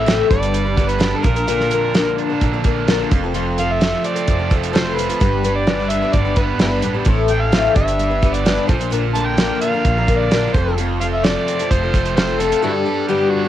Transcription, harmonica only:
0.00 0.30 E5 loud
0.30 0.89 D5 loud
0.88 1.17 B4 medium
1.15 1.24 A4 soft
1.23 2.17 A#4 medium
3.59 3.73 F5 loud
3.71 4.07 E5 loud
4.06 4.52 D5 medium
4.73 4.82 F4 medium
4.73 4.80 A4 medium
4.73 4.96 C5 medium
4.95 5.54 B4 medium
5.55 5.91 D5 medium
5.90 6.15 E5 loud
6.13 6.39 D5 loud
6.38 6.61 B4 medium
6.62 6.71 E4 medium
6.62 6.70 G4 medium
6.62 6.94 B4 medium
7.30 7.42 G5 loud
7.40 7.75 F5 loud
7.76 8.35 E5 loud
8.34 8.67 D5 medium
8.67 8.75 F4 soft
8.67 8.76 A4 soft
8.67 8.90 C5 medium
9.14 9.28 A5 loud
9.26 9.61 G5 loud
9.61 10.20 F5 loud
10.18 10.52 D5 medium
10.53 10.75 C5 medium
11.01 11.06 F5 loud
11.13 11.26 E5 loud
11.24 11.73 D5 medium
11.71 12.15 C5 loud
12.16 12.23 F4 medium
12.16 12.24 A4 medium
12.16 12.42 C5 loud
12.40 12.62 A4 medium
12.63 12.71 E4 medium
12.63 12.72 F#4 medium
12.63 13.09 A4 loud
13.07 13.32 G4 medium
13.30 13.48 F#4 medium

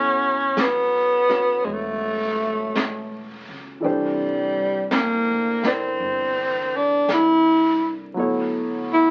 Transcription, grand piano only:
0.00 3.83 F#3 soft
0.00 3.84 B3 soft
0.00 3.84 E4 soft
0.00 3.80 A4 soft
0.00 1.30 C#5 medium
1.29 3.83 C#4 soft
1.29 3.83 F#4 soft
1.29 3.84 B4 soft
1.29 3.85 C#5 soft
3.80 8.15 E3 soft
3.80 8.16 D4 soft
3.80 8.17 G4 soft
3.80 8.16 A4 soft
3.85 8.18 C5 medium
5.63 8.16 C4 soft
5.63 8.16 E4 soft
5.63 8.17 A#4 soft
5.63 8.18 D5 soft
8.14 9.11 F#3 soft
8.14 9.11 B3 soft
8.14 9.11 E4 soft
8.18 9.11 A4 soft
8.18 9.11 C#5 medium

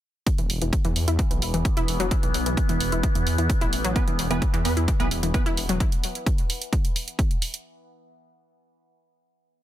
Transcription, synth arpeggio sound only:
0.38 0.44 E3 medium
0.62 0.70 E3 medium
0.85 0.93 E3 loud
1.08 1.13 E4 medium
1.31 1.39 E3 medium
1.54 1.57 E3 medium
1.77 1.80 E4 loud
2.00 2.06 F#3 loud
2.23 2.29 E3 medium
2.46 2.55 E3 medium
2.69 2.78 E3 loud
2.92 2.98 E4 medium
3.15 3.24 E3 medium
3.38 3.42 E3 medium
3.61 3.65 E4 loud
3.84 3.90 F#3 loud
4.08 4.13 E3 medium
4.31 4.39 E3 medium
4.54 4.62 E3 loud
4.77 4.82 E4 medium
5.00 5.08 E3 medium
5.23 5.26 E3 medium
5.46 5.49 E4 loud
5.69 5.75 F#3 loud

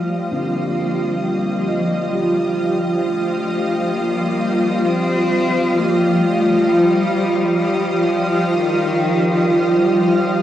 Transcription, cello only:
0.00 0.32 A3 medium
0.30 1.20 A#3 medium
1.21 2.53 A#3 medium
3.04 3.95 A3 medium
3.94 4.87 A#3 medium
4.85 5.79 C4 loud
5.77 6.23 A#3 medium
6.22 6.70 A3 medium
6.68 8.07 G3 medium
8.06 8.55 F3 medium
8.53 9.95 D#3 medium

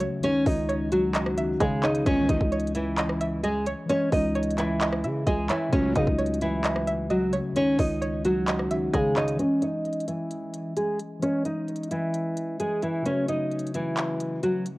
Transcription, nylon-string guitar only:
0.23 0.44 C#4 loud
0.23 0.45 C#5 medium
0.46 0.89 D#4 medium
0.46 0.90 D#5 medium
0.92 1.57 F#3 medium
0.92 1.57 F#4 medium
1.60 1.82 G#3 medium
1.60 1.81 G#4 medium
1.84 2.04 D#4 medium
1.84 2.05 D#5 medium
2.06 2.27 C#4 loud
2.06 2.28 C#5 medium
2.29 2.72 D#4 medium
2.29 2.72 D#5 medium
2.75 3.40 E3 medium
2.75 3.40 E4 medium
3.43 3.65 G#3 medium
3.43 3.65 G#4 medium
3.89 4.10 C#4 loud
3.89 4.11 C#5 medium
4.12 4.55 D#4 medium
4.12 4.56 D#5 medium
4.58 5.23 E3 medium
4.58 5.23 E4 medium
5.27 5.48 G#3 medium
5.27 5.48 G#4 medium
5.50 5.71 E3 medium
5.50 5.71 E4 medium
5.73 5.94 C#4 loud
5.73 5.94 C#5 medium
5.95 6.39 D#4 medium
5.95 6.39 D#5 medium
6.42 7.07 E3 medium
6.42 7.06 E4 medium
7.10 7.32 F#3 medium
7.10 7.31 F#4 medium
7.56 7.77 C#4 loud
7.56 7.78 C#5 medium
7.79 8.22 D#4 medium
7.79 8.22 D#5 medium
8.25 8.90 F#3 medium
8.25 8.89 F#4 medium
8.93 9.15 G#3 medium
8.93 9.14 G#4 medium
9.16 9.37 D#4 medium
9.16 9.38 D#5 medium
9.39 9.60 C#4 loud
9.39 9.61 C#5 medium
9.62 10.05 D#4 medium
9.62 10.05 D#5 medium
10.08 10.73 E3 medium
10.08 10.73 E4 medium
10.77 10.98 G#3 medium
10.77 10.98 G#4 medium
11.22 11.43 C#4 loud
11.22 11.44 C#5 medium
11.45 11.88 D#4 medium
11.45 11.89 D#5 medium
11.91 12.56 E3 medium
11.91 12.56 E4 medium
12.60 12.81 G#3 medium
12.60 12.81 G#4 medium
12.83 13.04 E3 medium
12.83 13.04 E4 medium
13.06 13.27 C#4 loud
13.06 13.27 C#5 medium
13.28 13.71 D#4 medium
13.28 13.72 D#5 medium
13.75 14.40 E3 medium
13.75 14.39 E4 medium
14.43 14.64 F#3 medium
14.43 14.64 F#4 medium

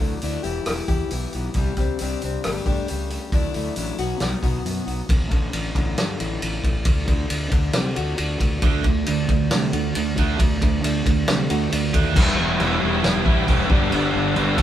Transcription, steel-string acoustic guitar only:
0.00 0.21 D3 medium
0.00 0.21 F#3 medium
0.00 0.22 A3 soft
0.00 0.22 D4 medium
0.00 0.23 E4 medium
0.22 0.43 D3 medium
0.22 0.43 F#3 medium
0.22 0.43 A3 medium
0.22 0.43 D4 medium
0.22 0.43 E4 medium
0.43 0.65 E3 medium
0.43 0.65 B3 medium
0.43 0.66 E4 medium
0.43 0.67 G4 medium
0.66 0.89 E3 medium
0.66 0.89 B3 medium
0.66 0.88 E4 medium
0.66 0.87 G4 medium
0.88 1.09 E3 medium
0.88 1.10 B3 medium
0.88 1.11 E4 medium
0.88 1.12 G4 medium
1.11 1.54 E3 medium
1.11 1.34 B3 medium
1.11 1.33 E4 medium
1.11 1.32 G4 medium
1.33 1.55 B3 soft
1.33 1.55 E4 medium
1.33 1.54 G4 medium
1.56 1.99 C3 medium
1.56 1.99 G3 medium
1.56 1.79 C4 medium
1.56 1.78 D4 medium
1.56 1.77 G4 medium
1.78 2.00 C4 medium
1.78 2.01 D4 medium
1.78 2.01 G4 medium
2.01 2.43 C3 medium
2.01 2.43 G3 medium
2.01 2.23 C4 medium
2.01 2.22 D4 medium
2.01 2.21 G4 medium
2.22 2.44 C4 medium
2.22 2.43 D4 medium
2.22 2.43 G4 medium
2.44 2.68 G3 medium
2.44 2.67 A3 medium
2.44 2.66 D4 medium
2.44 2.65 G4 medium
2.66 2.87 G3 medium
2.66 2.88 A3 medium
2.66 2.89 D4 medium
2.66 2.89 G4 medium
2.88 3.31 G3 medium
2.88 3.12 A3 medium
2.88 3.11 D4 medium
2.88 3.09 G4 medium
3.11 3.32 A3 soft
3.11 3.32 D4 medium
3.11 3.31 G4 medium
3.33 3.75 D3 medium
3.33 3.76 F#3 medium
3.33 3.55 A3 medium
3.33 3.54 D4 medium
3.33 3.53 E4 medium
3.54 3.76 A3 medium
3.54 3.76 D4 medium
3.54 3.77 E4 medium
3.76 3.97 D3 medium
3.76 3.98 F#3 medium
3.76 3.98 A3 medium
3.76 3.98 D4 medium
3.76 3.98 E4 medium
3.99 4.43 B2 medium
3.99 4.20 F#3 medium
3.99 4.20 B3 medium
3.99 4.21 D#4 medium
3.99 4.22 F#4 medium
4.21 4.43 F#3 medium
4.21 4.42 B3 medium
4.21 4.42 D#4 medium
4.21 4.42 F#4 medium
4.43 4.88 B2 medium
4.43 4.63 F#3 medium
4.43 4.64 B3 medium
4.43 4.65 D#4 medium
4.43 4.66 F#4 medium
4.65 5.08 F#3 medium
4.65 4.87 B3 medium
4.65 4.86 D#4 medium
4.65 4.85 F#4 medium
4.86 5.08 B3 soft
4.86 5.08 D#4 medium
4.86 5.07 F#4 medium
5.09 6.20 A2 medium
5.31 5.74 D3 medium
5.53 6.42 D4 medium
5.75 6.84 D3 medium
5.98 6.64 A3 medium
6.20 6.86 E4 medium
6.42 7.29 D4 medium
6.64 7.74 A3 medium
6.86 7.07 D3 medium
7.08 7.51 D3 medium
7.29 8.18 D4 medium
7.52 8.62 D3 medium
7.74 8.40 A3 medium
7.96 9.72 F#4 medium
8.18 9.07 D4 medium
8.40 9.51 A3 medium
8.62 8.83 D3 medium
8.85 9.28 D3 medium
9.07 9.94 D4 medium
9.29 10.38 D3 medium
9.51 10.16 A3 medium
9.73 10.83 F#4 medium
9.95 10.83 D4 medium
10.17 11.27 A3 medium
10.39 10.60 D3 medium
10.61 11.05 D3 medium
10.84 11.71 D4 medium
11.06 12.16 D3 medium
11.28 11.93 A3 medium
11.50 12.16 F#4 medium
11.72 12.16 D4 medium
11.94 12.16 A3 medium

